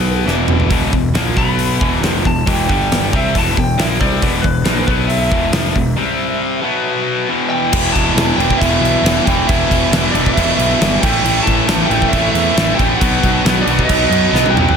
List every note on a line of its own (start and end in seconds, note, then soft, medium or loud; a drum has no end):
0.00 0.23 B1 medium
0.00 0.25 B2 medium
0.00 0.27 F#3 medium
0.00 0.26 B3 medium
0.00 0.21 B4 medium
0.26 0.67 E1 medium
0.26 0.69 E2 medium
0.26 0.70 B2 medium
0.26 0.70 E3 loud
0.26 snare medium
0.48 mid tom medium
0.60 floor tom medium
0.70 0.91 E1 medium
0.70 0.92 E2 medium
0.70 0.92 B2 medium
0.70 0.92 E3 medium
0.70 kick loud
0.70 open hi-hat soft
0.93 1.13 E1 medium
0.93 1.10 E2 medium
0.93 1.11 B2 medium
0.93 kick medium
1.14 1.35 A#1 loud
1.14 1.36 A#2 medium
1.14 1.36 F3 medium
1.14 1.36 A#3 medium
1.14 snare loud
1.14 open hi-hat soft
1.37 1.77 B1 medium
1.37 1.80 B2 medium
1.37 1.80 F#3 medium
1.37 1.80 B3 loud
1.37 2.02 B5 loud
1.37 kick medium
1.59 open hi-hat soft
1.80 2.00 E1 medium
1.80 2.01 E2 medium
1.80 2.02 B2 medium
1.80 2.02 E3 medium
1.80 kick loud
2.01 2.22 F1 medium
2.01 2.23 F2 medium
2.01 2.24 C3 medium
2.01 2.24 F3 loud
2.01 2.27 A5 loud
2.01 snare loud
2.01 open hi-hat medium
2.25 2.45 E1 medium
2.25 2.42 E2 medium
2.25 2.42 B2 medium
2.25 2.48 A5 loud
2.25 kick medium
2.46 2.67 E1 medium
2.46 2.67 E2 medium
2.46 2.68 B2 medium
2.46 2.68 E3 medium
2.46 3.15 G5 medium
2.46 kick loud
2.46 open hi-hat medium
2.68 3.10 G1 medium
2.68 3.11 G2 medium
2.68 3.11 D3 medium
2.68 3.12 G3 loud
2.68 kick loud
2.92 snare loud
2.92 open hi-hat medium
3.13 3.33 C2 medium
3.13 3.34 C3 medium
3.13 3.34 G3 medium
3.13 3.34 C4 medium
3.13 3.36 E5 medium
3.13 kick loud
3.35 3.55 E1 medium
3.35 3.56 E2 medium
3.35 3.56 B2 medium
3.35 3.56 E3 medium
3.35 3.58 A5 loud
3.35 kick loud
3.35 open hi-hat medium
3.47 snare soft
3.57 3.76 E1 medium
3.57 3.74 E2 medium
3.57 3.74 B2 medium
3.57 3.80 G5 medium
3.57 kick medium
3.77 3.98 A#1 medium
3.77 3.99 A#2 medium
3.77 3.99 F3 medium
3.77 3.99 A#3 loud
3.77 3.86 E5 medium
3.77 snare loud
3.77 open hi-hat medium
3.91 snare soft
3.99 4.21 C2 medium
3.99 4.21 C3 medium
3.99 4.21 G3 medium
3.99 4.21 C4 loud
3.99 4.45 D5 medium
3.99 kick medium
4.22 4.43 E1 medium
4.22 4.42 E2 medium
4.22 4.42 B2 medium
4.22 4.43 E3 medium
4.22 kick loud
4.22 open hi-hat medium
4.42 4.64 E1 medium
4.42 4.61 E2 medium
4.42 4.61 B2 medium
4.42 4.86 B4 medium
4.42 kick medium
4.65 4.86 A#1 loud
4.65 4.86 A#2 medium
4.65 4.86 F3 loud
4.65 4.87 A#3 medium
4.65 snare loud
4.65 open hi-hat soft
4.87 5.28 B1 medium
4.87 5.30 B2 medium
4.87 5.31 F#3 medium
4.87 5.31 B3 medium
4.87 5.10 B4 medium
4.87 kick loud
5.08 7.24 E5 medium
5.08 open hi-hat soft
5.31 5.52 E1 medium
5.31 5.53 E2 medium
5.31 5.53 B2 medium
5.31 5.53 E3 medium
5.31 kick loud
5.53 5.74 F1 medium
5.53 5.75 F2 medium
5.53 5.75 C3 medium
5.53 5.75 F3 loud
5.53 snare loud
5.53 open hi-hat medium
5.65 snare soft
5.75 5.96 E1 medium
5.75 5.93 E2 medium
5.75 5.93 B2 medium
5.75 kick medium
5.97 6.62 C3 medium
5.97 6.62 G3 loud
5.97 6.63 C4 medium
6.63 7.28 B2 medium
6.63 7.29 F#3 medium
6.63 7.29 B3 medium
7.29 7.72 E2 medium
7.29 7.72 B2 medium
7.29 7.73 E3 loud
7.50 7.92 G5 medium
7.72 7.88 E1 medium
7.72 8.16 E2 medium
7.72 8.15 B2 medium
7.72 8.14 E3 medium
7.72 8.17 E3 medium
7.72 8.15 G3 loud
7.72 8.15 B3 medium
7.72 8.16 E4 loud
7.72 kick loud
7.72 crash loud
7.72 crash medium
7.92 8.11 E1 medium
7.92 8.36 A5 loud
7.92 kick medium
7.92 crash medium
8.15 8.31 E1 loud
8.15 8.38 E2 medium
8.15 8.38 B2 medium
8.15 8.36 E3 medium
8.15 8.39 E3 medium
8.15 8.36 G3 medium
8.15 8.37 B3 medium
8.15 8.39 E4 medium
8.15 snare loud
8.15 crash medium
8.36 8.53 E1 medium
8.36 8.59 E2 medium
8.36 8.60 B2 medium
8.36 8.59 E3 medium
8.36 8.61 E3 medium
8.36 8.59 G3 medium
8.36 8.59 B3 medium
8.36 8.60 E4 medium
8.36 8.58 G5 loud
8.36 crash medium
8.50 kick medium
8.58 8.76 E1 medium
8.58 9.04 E2 loud
8.58 9.04 B2 medium
8.58 9.02 E3 loud
8.58 9.06 E3 medium
8.58 9.02 G3 loud
8.58 9.03 B3 medium
8.58 9.04 E4 loud
8.58 8.81 E5 loud
8.58 kick medium
8.62 crash medium
8.80 8.96 B1 medium
8.80 9.28 E5 loud
8.85 crash medium
9.02 9.18 E1 medium
9.02 9.26 E2 medium
9.02 9.26 B2 medium
9.02 9.25 E3 medium
9.02 9.28 E3 medium
9.02 9.24 G3 medium
9.02 9.25 B3 loud
9.02 9.26 E4 loud
9.02 crash medium
9.06 snare loud
9.25 9.42 E1 loud
9.25 9.48 E2 medium
9.25 9.48 B2 loud
9.25 9.46 E3 medium
9.25 9.50 E3 medium
9.25 9.47 G3 medium
9.25 9.47 B3 medium
9.25 9.48 E4 loud
9.25 9.49 G5 loud
9.25 kick medium
9.25 crash medium
9.46 9.64 E1 medium
9.46 9.92 E2 medium
9.46 9.92 B2 loud
9.46 9.90 E3 medium
9.46 9.94 E3 loud
9.46 9.90 G3 medium
9.46 9.91 B3 loud
9.46 9.92 E4 loud
9.46 10.11 E5 loud
9.46 kick loud
9.46 crash medium
9.71 9.86 E1 medium
9.71 kick medium
9.71 crash medium
9.90 10.07 E1 loud
9.90 10.14 E2 medium
9.90 10.15 B2 medium
9.90 10.12 E3 medium
9.90 10.12 G3 medium
9.90 10.12 B3 medium
9.90 10.14 E4 medium
9.90 snare loud
9.90 crash medium
9.94 10.16 E3 loud
10.12 10.29 E1 medium
10.12 10.36 E2 medium
10.12 10.33 E3 medium
10.12 10.34 G3 medium
10.12 10.34 B3 medium
10.12 10.35 E4 loud
10.12 10.33 D5 medium
10.12 crash medium
10.16 10.37 B2 medium
10.16 10.37 E3 medium
10.26 kick medium
10.33 10.52 E1 medium
10.33 10.79 E2 medium
10.33 10.79 E3 medium
10.33 10.79 G3 loud
10.33 10.80 B3 loud
10.33 10.80 E4 loud
10.33 10.54 E5 loud
10.37 10.79 B2 loud
10.37 10.79 E3 loud
10.37 kick loud
10.37 crash medium
10.55 10.73 B1 medium
10.55 11.02 E5 medium
10.59 crash medium
10.80 10.96 G1 medium
10.80 11.01 E2 medium
10.80 11.01 B2 medium
10.80 11.01 E3 medium
10.80 11.01 E3 loud
10.80 11.01 G3 loud
10.80 11.02 B3 loud
10.80 11.02 E4 loud
10.80 snare loud
10.80 crash medium
11.00 11.18 A1 medium
11.00 11.23 A2 loud
11.00 11.22 A2 loud
11.00 11.24 E3 loud
11.00 11.23 E3 medium
11.00 11.24 A3 loud
11.00 11.23 C4 loud
11.00 11.24 E4 loud
11.00 11.43 G5 loud
11.00 kick loud
11.00 crash loud
11.23 11.39 A1 medium
11.23 11.66 A2 medium
11.23 11.67 A2 loud
11.23 11.68 E3 medium
11.23 11.67 E3 loud
11.23 11.67 A3 loud
11.23 11.68 A3 medium
11.23 11.69 C4 loud
11.23 11.69 E4 loud
11.23 crash medium
11.43 11.86 A5 loud
11.47 11.62 A1 medium
11.47 kick medium
11.47 crash medium
11.67 11.83 A1 loud
11.67 11.87 A2 medium
11.67 11.88 A2 medium
11.67 11.89 E3 medium
11.67 11.88 E3 medium
11.67 11.89 A3 medium
11.67 11.88 A3 medium
11.67 11.89 C4 medium
11.67 11.90 E4 loud
11.67 snare loud
11.67 crash medium
11.86 12.05 A1 medium
11.86 12.11 A2 medium
11.86 12.10 A2 medium
11.86 12.12 E3 medium
11.86 12.12 A3 medium
11.86 12.12 C4 medium
11.86 12.11 G5 loud
11.90 12.10 E3 medium
11.90 12.11 A3 medium
11.90 12.13 E4 medium
11.90 crash medium
12.02 kick medium
12.09 12.55 A2 loud
12.09 12.55 A2 medium
12.09 12.55 E3 medium
12.09 12.55 A3 loud
12.09 12.30 E5 loud
12.13 12.28 A1 medium
12.13 12.55 E3 medium
12.13 12.56 A3 medium
12.13 12.57 C4 loud
12.13 12.58 E4 medium
12.13 kick medium
12.13 crash medium
12.31 12.49 E2 medium
12.31 12.78 E5 loud
12.31 crash medium
12.56 12.72 A1 medium
12.56 12.76 A2 medium
12.56 12.77 E3 loud
12.56 12.76 E3 medium
12.56 12.77 A3 medium
12.56 12.77 C4 loud
12.56 12.78 E4 medium
12.56 snare loud
12.56 crash medium
12.75 12.98 A2 medium
12.75 12.99 A2 medium
12.75 12.98 E3 medium
12.75 12.99 E3 medium
12.75 12.99 A3 medium
12.75 12.99 C4 medium
12.75 12.95 G5 loud
12.79 12.94 A1 loud
12.79 12.99 E4 medium
12.79 kick medium
12.79 crash medium
12.95 13.44 B2 loud
12.95 13.60 F#5 loud
13.00 13.16 B1 medium
13.00 13.43 B2 medium
13.00 13.44 D#3 loud
13.00 13.44 F#3 medium
13.00 13.44 F#3 loud
13.00 13.45 B3 loud
13.00 13.46 B3 medium
13.00 13.46 D#4 medium
13.00 kick loud
13.00 crash medium
13.23 13.38 B1 loud
13.23 kick medium
13.23 crash medium
13.44 13.60 B1 loud
13.44 13.66 B2 medium
13.44 13.65 B2 medium
13.44 13.65 D#3 medium
13.44 13.66 F#3 medium
13.44 13.68 B3 medium
13.44 13.67 B3 medium
13.44 13.66 D#4 medium
13.44 snare loud
13.44 crash medium
13.62 13.84 D5 medium
13.66 13.82 B1 medium
13.66 13.86 B2 medium
13.66 13.88 B2 medium
13.66 13.87 D#3 medium
13.66 13.87 F#3 medium
13.66 13.89 F#3 medium
13.66 13.88 B3 medium
13.66 13.90 B3 medium
13.66 13.88 D#4 loud
13.66 crash medium
13.79 kick medium
13.85 14.29 B2 medium
13.85 14.30 D#3 medium
13.85 14.30 F#3 medium
13.85 14.31 B3 medium
13.85 14.06 D#5 loud
13.89 14.04 B1 medium
13.89 14.32 B2 medium
13.89 14.33 F#3 medium
13.89 14.33 B3 loud
13.89 14.31 D#4 loud
13.89 kick loud
13.89 crash medium
14.07 14.25 F#2 medium
14.07 14.54 D#5 medium
14.12 crash medium
14.31 14.47 B1 medium
14.31 14.51 B2 medium
14.31 14.54 B2 medium
14.31 14.52 D#3 medium
14.31 14.53 F#3 medium
14.31 14.55 F#3 medium
14.31 14.54 B3 medium
14.31 14.56 B3 medium
14.31 14.54 D#4 loud
14.35 snare medium
14.46 high tom medium
14.50 14.69 B1 medium
14.50 14.74 B2 medium
14.50 14.74 D#3 medium
14.50 14.77 G5 loud
14.55 14.75 B2 medium
14.55 14.75 F#3 medium
14.55 14.76 F#3 medium
14.55 14.76 B3 medium
14.55 14.77 B3 medium
14.55 14.76 D#4 loud
14.55 mid tom loud
14.69 floor tom medium